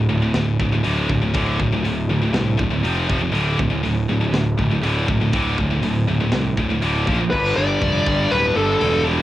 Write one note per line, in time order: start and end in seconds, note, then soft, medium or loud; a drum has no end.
0.09 0.31 D1 medium
0.09 0.22 D2 medium
0.09 0.21 A2 medium
0.22 0.34 D2 medium
0.22 0.34 A2 medium
0.34 0.57 D1 medium
0.34 0.58 D2 medium
0.34 0.58 A2 medium
0.34 snare loud
0.34 open hi-hat soft
0.60 0.82 D1 medium
0.60 0.72 D2 medium
0.60 0.72 A2 medium
0.60 kick medium
0.73 0.82 D2 medium
0.73 0.83 A2 medium
0.84 1.07 D1 medium
0.84 1.08 D2 medium
0.84 1.08 A2 medium
0.84 1.08 D3 loud
0.84 open hi-hat medium
1.09 1.32 D1 medium
1.09 1.21 D2 medium
1.09 1.21 A2 medium
1.09 kick medium
1.22 1.33 D2 medium
1.22 1.34 A2 medium
1.34 1.57 D1 medium
1.34 1.58 D2 medium
1.34 1.58 A2 medium
1.34 1.59 D3 medium
1.34 kick loud
1.34 open hi-hat medium
1.59 1.82 D1 medium
1.59 1.72 D2 medium
1.59 1.71 A2 medium
1.59 kick medium
1.73 1.84 D2 medium
1.73 1.84 A2 medium
1.83 2.06 D1 medium
1.83 2.07 D2 medium
1.83 2.07 A2 medium
1.83 open hi-hat medium
2.09 2.31 D1 medium
2.09 2.21 D2 medium
2.09 2.21 A2 medium
2.22 2.32 D2 medium
2.22 2.32 A2 medium
2.33 2.56 C2 medium
2.33 2.56 D2 medium
2.33 2.56 A2 medium
2.33 snare loud
2.33 open hi-hat medium
2.57 2.81 D1 medium
2.57 2.70 D2 medium
2.57 2.69 A2 medium
2.57 kick medium
2.71 2.83 D2 medium
2.71 2.84 A2 medium
2.83 3.06 F1 loud
2.83 3.06 F2 loud
2.83 3.07 C3 loud
2.83 3.08 F3 loud
2.83 open hi-hat medium
3.07 3.32 F1 loud
3.07 3.19 F2 medium
3.07 3.19 C3 medium
3.07 3.20 F3 medium
3.07 kick loud
3.20 3.31 F2 medium
3.20 3.32 C3 medium
3.32 3.56 D1 medium
3.32 3.57 D2 medium
3.32 3.57 A2 medium
3.32 3.57 D3 loud
3.32 open hi-hat medium
3.58 3.81 D1 medium
3.58 3.70 D2 medium
3.58 3.69 A2 medium
3.58 kick medium
3.70 3.82 D2 medium
3.70 3.82 A2 medium
3.83 4.06 D1 medium
3.83 4.06 D2 medium
3.83 4.06 A2 medium
3.83 open hi-hat soft
4.09 4.31 D1 medium
4.09 4.21 D2 medium
4.09 4.20 A2 medium
4.21 4.33 D2 medium
4.21 4.33 A2 medium
4.33 4.55 D1 medium
4.33 4.56 D2 medium
4.33 4.56 A2 medium
4.33 snare loud
4.33 open hi-hat medium
4.58 4.81 D1 medium
4.58 4.70 D2 medium
4.58 4.70 A2 medium
4.58 kick medium
4.71 4.82 D2 medium
4.71 4.83 A2 medium
4.83 5.05 D1 medium
4.83 5.07 D2 medium
4.83 5.07 A2 medium
4.83 5.08 D3 loud
4.83 open hi-hat medium
5.08 5.30 D1 loud
5.08 5.20 D2 medium
5.08 5.20 A2 medium
5.08 kick medium
5.21 5.32 D2 medium
5.21 5.33 A2 medium
5.33 5.55 D1 medium
5.33 5.57 D2 medium
5.33 5.57 A2 medium
5.33 5.58 D3 loud
5.33 kick loud
5.33 open hi-hat medium
5.58 5.80 D1 medium
5.58 5.70 D2 medium
5.58 5.69 A2 medium
5.58 kick medium
5.70 5.82 D2 medium
5.70 5.82 A2 medium
5.83 6.05 D1 loud
5.83 6.05 D2 medium
5.83 6.06 A2 medium
5.83 open hi-hat medium
6.08 6.30 D1 loud
6.08 6.20 D2 medium
6.08 6.19 A2 medium
6.21 6.32 D2 medium
6.21 6.32 A2 medium
6.32 6.55 C2 medium
6.32 6.55 D2 medium
6.32 6.55 A2 medium
6.32 snare loud
6.32 open hi-hat medium
6.57 6.80 D1 loud
6.57 6.70 D2 medium
6.57 6.69 A2 loud
6.57 kick medium
6.70 6.81 D2 medium
6.70 6.82 A2 medium
6.82 7.09 D1 medium
6.82 7.06 D2 loud
6.82 7.06 A2 medium
6.82 7.07 D3 loud
6.82 open hi-hat medium
7.07 7.29 A#1 medium
7.07 7.18 A#2 loud
7.07 7.18 F3 medium
7.07 7.19 A#3 loud
7.07 kick loud
7.20 7.30 A#2 medium
7.20 7.32 F3 medium
7.30 7.51 G1 medium
7.30 8.54 G2 medium
7.30 8.55 D3 medium
7.30 8.53 G3 loud
7.30 7.57 B4 medium
7.30 kick loud
7.30 crash loud
7.30 crash medium
7.56 7.76 G1 medium
7.56 8.33 D5 loud
7.81 8.00 F1 loud
7.81 kick medium
7.81 crash medium
8.06 8.25 G1 loud
8.06 kick medium
8.31 8.50 D1 loud
8.31 8.56 B4 loud
8.31 crash medium
8.54 8.75 G1 loud
8.54 8.79 G2 medium
8.54 8.80 D3 medium
8.54 8.78 G3 medium
8.54 9.02 A4 medium
8.80 9.19 E1 loud
8.80 9.22 G2 medium
8.80 9.22 D3 medium
8.80 9.22 G3 medium
8.80 crash medium
9.05 9.22 G2 medium
9.05 9.22 D3 medium
9.05 9.22 G3 medium